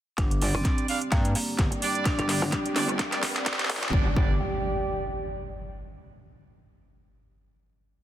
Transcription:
0.18 G1 G3 D4 G4 D5, kick, snare, closed hi-hat, riser
0.31 D4, closed hi-hat
0.41 G3 D4 D5, open hi-hat
0.55 G1 C4
0.65 kick, snare, closed hi-hat
0.78 D5, closed hi-hat
0.88 G3 D4 F5, open hi-hat
1.02 closed hi-hat
1.12 G2 A#3, kick, snare, closed hi-hat
1.22 G5, closed hi-hat
1.35 open hi-hat
1.59 G1, kick, snare, closed hi-hat
1.72 closed hi-hat
1.82 G3 D4 D5, open hi-hat
1.95 closed hi-hat
2.06 C4 D4, kick, snare, closed hi-hat
2.19 G1 D4, closed hi-hat
2.29 G3 D4 D5, snare, open hi-hat
2.42 G1 D4
2.52 D4, kick, snare, closed hi-hat
2.66 closed hi-hat
2.76 G1 G3 D4 D5, snare, open hi-hat
2.89 closed hi-hat
2.99 kick, snare, closed hi-hat
3.12 G3 D4 D5, snare, closed hi-hat
3.23 kick, snare, open hi-hat
3.36 snare, closed hi-hat
3.46 kick, snare, closed hi-hat
3.53 snare
3.59 snare, closed hi-hat
3.64 snare
3.70 A#1, snare, open hi-hat
3.76 snare
3.83 snare, closed hi-hat
3.88 snare
3.93 G1 G3 D4 G4 D5, kick, impact
4.01 D5
4.08 G5
4.16 G1 G3 D4 D5, kick

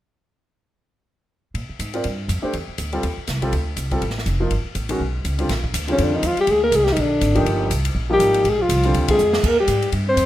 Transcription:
1.54 A#2, ride
1.69 muted upright bass stroke
1.79 G#2, hi-hat pedal, ride
1.93 C4 F4 A#4 D5, ride
2.04 G2, ride
2.28 F2, hi-hat pedal, ride
2.42 A3 D4 G4 C5, muted upright bass stroke
2.53 E2, ride
2.68 muted upright bass stroke
2.78 D2, hi-hat pedal, ride
2.92 G3 C4 F4 A4, ride
3.03 D#2, ride
3.17 muted upright bass stroke
3.27 C2, snare, hi-hat pedal, ride
3.42 G3 C4 F4 A4, kick, ride
3.52 D2, ride
3.77 C2, hi-hat pedal, ride
3.91 G3 C4 F4 A4, kick, ride
4.01 A1, ride
4.10 snare
4.18 snare
4.26 F1, hi-hat pedal, ride
4.40 F3 A#3 D#4 F4
4.51 G1, ride
4.64 muted upright bass stroke
4.75 A1, hi-hat pedal, ride
4.89 D#3 G#3 C#4 F#4, ride
5.00 B1
5.25 C#2, hi-hat pedal, ride
5.39 D3 G3 C4 F4, ride
5.49 A#1, snare, ride
5.64 kick
5.74 D2, hi-hat pedal, ride
5.88 C#3 D3 G3 C4 F4, ride
5.92 C#4
5.98 F2 D3, ride
6.03 D4
6.12 D#3 D#4
6.23 D#2 F3 F4, hi-hat pedal, ride
6.37 G3 G4, muted upright bass stroke, ride
6.47 D2 G#3 G#4, ride
6.63 A#3 A#4
6.72 C2 G#3, hi-hat pedal, ride
6.76 G#4
6.83 G3 G4, snare
6.90 D#3 D#4
6.96 A#1 D3 D4, ride
7.21 G#1, hi-hat pedal, ride
7.35 F3 A#3 D#4 G4, kick, ride
7.45 G1, ride
7.70 C2, hi-hat pedal, ride
7.85 ride
7.95 A#1
8.10 F3 G3 A#3 D#4 G4
8.19 G#1, hi-hat pedal, ride
8.34 ride
8.44 A#1 G#3, ride
8.49 G#4
8.61 F3 F4
8.69 C2, hi-hat pedal, ride
8.83 D3 G3 C4 F4, ride
8.94 D2, ride
9.08 G#3 G#4, kick, ride
9.18 F2, hi-hat pedal
9.33 snare
9.43 D#2 A#3 A#4, kick, crash
9.60 G3 G4
9.67 G#2, hi-hat pedal, ride
9.82 ride
9.92 G2, ride
10.08 C4 C5
10.16 F2, hi-hat pedal, ride

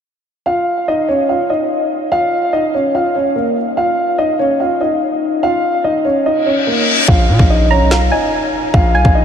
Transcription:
0.46 F4 F5
0.88 D#4 D#5
1.08 C#4 C#5
1.29 F4 F5
1.50 D#4 D#5
2.12 F4 F5
2.53 D#4 D#5
2.74 C#4 C#5
2.95 F4 F5
3.15 C#4 C#5
3.36 A#3 A#4
3.77 F4 F5
4.18 D#4 D#5
4.39 C#4 C#5
4.60 F4 F5
4.81 D#4 D#5
5.43 F4 F5
5.84 D#4 D#5
6.05 C#4 C#5
6.26 D#4 D#5, reverse cymbal
6.46 C#4 C#5
6.67 A#3 A#4
7.08 A#1 F4 F5, kick, impact
7.29 A#2
7.39 A#1, kick
7.50 D#4 D#5
7.70 C#4 C#5 A#5
7.81 B1
7.91 F4 F5, finger snap, snare
8.12 D#4 D#5 G#5
8.74 A#1 F4 F5, kick
8.95 B1 G#5
9.05 A#1, kick
9.15 D#4 D#5

